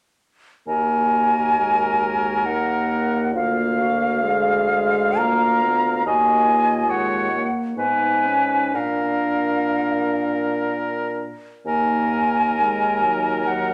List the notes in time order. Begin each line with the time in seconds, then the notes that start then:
0.67 D#2 A#3 F#4 A#4 G#5
1.59 G#3
2.45 A#3 D#4 F#5
3.34 D2 A#3 F4 F5
3.80 F#4
4.22 G#3 G#4
4.70 G#3
5.18 A#3 F4 A#5
5.63 B3
6.06 D#2 A#3 F#4 D#5 G#5
6.48 F4
6.88 G#3 C#5 F#5
7.32 A#3
7.77 G#2 B3 D#4 B4 G#5
8.26 C#4
8.74 A#2 D4 A#4 F5
11.66 D#2 A#3 D#4 A#4 G#5
12.58 G#3 D#4
13.03 F#3
13.46 F#3 F#5